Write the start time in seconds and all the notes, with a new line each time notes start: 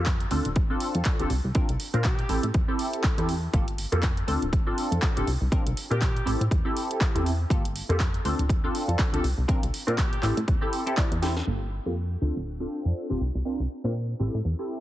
Already playing: F2
0.06 kick, clap, closed hi-hat
0.20 closed hi-hat
0.31 D2 C4 D4 F4 A4, open hi-hat
0.45 D1, closed hi-hat
0.56 kick, closed hi-hat
0.70 C4 D4 F4 A4
0.80 open hi-hat
0.95 F2, closed hi-hat
1.05 kick, clap, closed hi-hat
1.19 D1 C4 D4 F4 G4 A4, closed hi-hat
1.30 C2, open hi-hat
1.44 C2
1.55 C4 D4 F4 A#4, kick, closed hi-hat
1.69 C2, closed hi-hat
1.80 open hi-hat
1.94 A#2 C4 D4 F4 A#4, closed hi-hat
2.04 G4, kick, clap, closed hi-hat
2.19 closed hi-hat
2.29 A1 C4 E4 G4 A4, open hi-hat
2.43 A2, closed hi-hat
2.54 E2, kick, closed hi-hat
2.68 C4 E4 G4 A4
2.79 open hi-hat
2.93 closed hi-hat
3.04 kick, clap, closed hi-hat
3.18 E2 C4 E4 G4 A4, closed hi-hat
3.29 open hi-hat
3.53 G1 A#3 F4 G4 A4, kick, closed hi-hat
3.68 closed hi-hat
3.78 open hi-hat
3.92 F2 A#3 F4 G4 A4, closed hi-hat
4.03 kick, clap, closed hi-hat
4.17 closed hi-hat
4.27 D2 C4 D4 F4 A4, open hi-hat
4.42 D1, closed hi-hat
4.53 kick, closed hi-hat
4.66 C4 D4 F4 A4
4.78 open hi-hat
4.91 F2, closed hi-hat
5.02 kick, clap, closed hi-hat
5.16 D1 C4 D4 F4 G4 A4, closed hi-hat
5.27 C2, open hi-hat
5.41 C2
5.52 C4 D4 F4 A#4, kick, closed hi-hat
5.66 C2, closed hi-hat
5.77 open hi-hat
5.91 A#2 C4 D4 F4 G4 A#4, closed hi-hat
6.02 kick, clap, closed hi-hat
6.17 closed hi-hat
6.25 A1 C4 E4 G4 A4, open hi-hat
6.41 A2, closed hi-hat
6.51 E2, kick, closed hi-hat
6.65 C4 E4 G4 A4
6.77 open hi-hat
6.91 closed hi-hat
7.01 kick, clap, closed hi-hat
7.15 E2 C4 E4 G4 A4, closed hi-hat
7.26 open hi-hat
7.50 G1 A#3 F4 G4 A4, kick, closed hi-hat
7.65 closed hi-hat
7.76 open hi-hat
7.89 F2 A#3 F4 G4 A4, closed hi-hat
8.00 kick, clap, closed hi-hat
8.14 closed hi-hat
8.25 D2 C4 D4 F4 A4, open hi-hat
8.39 D1, closed hi-hat
8.49 kick, closed hi-hat
8.64 C4 D4 F4 A4
8.75 open hi-hat
8.88 F2, closed hi-hat
8.99 kick, clap, closed hi-hat
9.13 D1 C4 D4 F4 G4 A4, closed hi-hat
9.23 C2, open hi-hat
9.38 C2
9.48 C4 D4 F4 A#4, kick, closed hi-hat
9.63 C2, closed hi-hat
9.74 open hi-hat
9.87 A#2 C4 D4 F4 A#4, closed hi-hat
9.98 G4, kick, clap, closed hi-hat
10.13 closed hi-hat
10.22 A1 C4 E4 G4 A4, clap, open hi-hat
10.37 A2, closed hi-hat
10.48 E2, kick, closed hi-hat
10.61 C4 E4 G4 A4
10.73 open hi-hat
10.86 C4 E4 G4 A4, closed hi-hat
10.97 E4 G4 D5, kick, clap, closed hi-hat
11.12 E2, closed hi-hat
11.22 C4 E4 G4 A4, snare, open hi-hat
11.37 snare
11.47 G1 A#3 F4 G4 A4
11.86 F2 A#3 F4 G4 A4
12.21 D2 C4 D4 F4 A4
12.36 D1
12.60 C4 D4 F4 A4
12.85 F2
13.09 D1 C4 D4 F4 G4
13.21 C2
13.35 C2
13.45 C4 D4 F4 A#4
13.60 C2
13.84 A#2 C4 D4 F4 A#4
14.19 A1 C4 E4 G4 A4
14.34 A2
14.45 E2
14.59 C4 E4 G4 A4